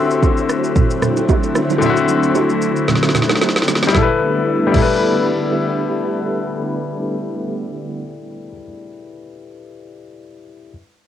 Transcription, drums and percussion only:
0.11 shaker
0.23 kick, high bongo, shaker
0.37 shaker
0.49 cross-stick, shaker
0.64 shaker
0.76 kick, low conga, shaker
0.91 shaker
1.02 cross-stick, low conga, shaker
1.17 low bongo, shaker
1.29 kick, high bongo, shaker
1.44 shaker
1.55 cross-stick, high bongo, low bongo, shaker
1.70 low bongo, shaker
1.82 low conga, shaker
1.97 shaker
2.09 low bongo, shaker
2.23 shaker
2.35 high bongo, shaker
2.50 shaker
2.62 shaker
2.76 shaker
2.88 snare, low conga, shaker
2.96 snare
3.03 snare, shaker
3.09 snare
3.14 snare, low conga, shaker
3.22 snare
3.29 snare, low bongo, shaker
3.35 snare
3.41 snare, high bongo, shaker
3.49 snare
3.56 snare, shaker
3.62 snare
3.68 snare, high bongo, low bongo, shaker
3.75 snare
3.82 snare, low bongo, shaker
3.88 snare
3.94 kick, snare, low conga
4.74 kick, crash, low conga

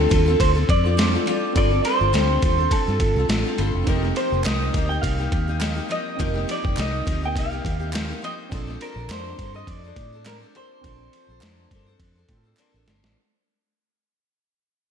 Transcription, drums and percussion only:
0.11 kick, ride
0.40 kick, ride
0.69 kick, ride
0.99 snare, ride
1.27 ride
1.56 kick, ride
1.85 ride
2.14 snare, ride
2.42 kick, ride
2.71 kick, ride
3.00 kick, ride
3.29 snare, ride
3.58 ride
3.87 kick, ride
4.03 snare
4.16 ride
4.44 snare, clap, ride
4.74 kick, ride
5.03 kick, ride
5.32 kick, ride
5.61 snare, clap, ride
5.91 ride
6.20 kick, ride
6.36 snare
6.49 ride
6.65 kick
6.77 snare, clap, ride
7.07 kick, ride
7.36 kick, ride
7.65 kick, ride
7.93 snare, clap, ride
8.24 ride
8.52 kick, ride
8.68 snare
8.81 ride
9.10 snare, clap, ride
9.39 kick, ride
9.67 kick, ride
9.96 kick, ride
10.26 snare, clap, ride
10.55 ride
10.84 kick, ride
11.13 ride
11.41 snare, clap, ride
11.71 kick, ride
12.00 kick, ride
12.29 kick, ride
12.57 clap, ride
12.88 snare, ride
13.04 snare

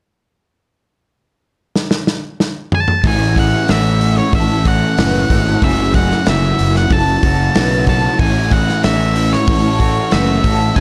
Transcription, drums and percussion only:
1.76 snare
1.91 snare
2.07 snare
2.40 snare
2.72 mid tom
2.88 mid tom
3.04 kick, open hi-hat
3.36 kick, open hi-hat
3.68 snare, open hi-hat
4.01 open hi-hat
4.33 kick, open hi-hat
4.65 kick, open hi-hat
4.98 snare, open hi-hat
5.30 kick, open hi-hat
5.62 kick, open hi-hat
5.94 kick, open hi-hat
6.11 snare
6.26 snare, open hi-hat
6.59 open hi-hat
6.75 snare
6.90 kick, open hi-hat
7.23 kick, open hi-hat
7.55 snare, open hi-hat
7.87 kick, open hi-hat
8.19 kick, open hi-hat
8.51 kick, open hi-hat
8.69 snare
8.83 snare, open hi-hat
9.16 open hi-hat
9.33 snare
9.47 kick, open hi-hat
9.80 kick, open hi-hat
10.11 snare, open hi-hat
10.44 kick, open hi-hat
10.76 kick, open hi-hat

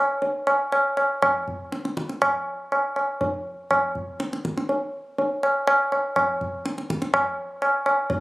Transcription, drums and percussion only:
0.22 tabla tin
0.47 tabla na
0.72 tabla na
0.97 tabla na
1.22 tabla na, tabla ge
1.48 tabla ge
1.72 tabla te
1.85 tabla te
1.97 tabla ke
2.09 tabla te
2.22 tabla na, tabla ge
2.72 tabla na
2.96 tabla na
3.21 tabla tin, tabla ge
3.71 tabla na, tabla ge
3.95 tabla ge
4.20 tabla te
4.33 tabla te
4.45 tabla ke
4.58 tabla te
4.69 tabla tin
5.18 tabla tin
5.43 tabla na
5.67 tabla na
5.92 tabla na
6.16 tabla na, tabla ge
6.41 tabla ge
6.66 tabla te
6.78 tabla te
6.90 tabla ke
7.02 tabla te
7.14 tabla na, tabla ge
7.62 tabla na
7.86 tabla na
8.10 tabla tin, tabla ge

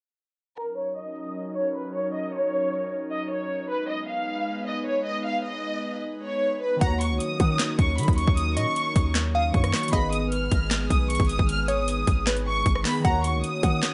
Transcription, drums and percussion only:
6.81 kick, closed hi-hat
7.01 closed hi-hat
7.20 closed hi-hat
7.40 kick, closed hi-hat
7.59 snare, clap, closed hi-hat
7.79 kick, closed hi-hat
7.98 closed hi-hat
8.03 closed hi-hat
8.08 kick, closed hi-hat
8.13 closed hi-hat
8.18 closed hi-hat
8.28 kick
8.37 closed hi-hat
8.57 closed hi-hat
8.76 closed hi-hat
8.96 kick, closed hi-hat
9.15 snare, clap, closed hi-hat
9.54 kick, closed hi-hat
9.64 cross-stick, closed hi-hat
9.74 cross-stick, snare, clap, closed hi-hat, open hi-hat
9.78 closed hi-hat
9.83 closed hi-hat
9.88 closed hi-hat
9.93 kick, closed hi-hat
10.13 closed hi-hat
10.32 closed hi-hat
10.51 kick, closed hi-hat
10.71 snare, clap, closed hi-hat
10.90 kick, closed hi-hat
11.10 closed hi-hat
11.15 closed hi-hat
11.20 kick, closed hi-hat
11.25 closed hi-hat
11.29 closed hi-hat
11.39 kick
11.49 closed hi-hat
11.68 closed hi-hat
11.88 closed hi-hat
12.07 kick, closed hi-hat
12.27 snare, clap, closed hi-hat
12.37 closed hi-hat
12.66 kick, closed hi-hat
12.76 cross-stick
12.85 snare, clap, open hi-hat
13.05 kick, closed hi-hat
13.24 closed hi-hat
13.44 closed hi-hat
13.63 kick, closed hi-hat
13.83 snare, clap, closed hi-hat

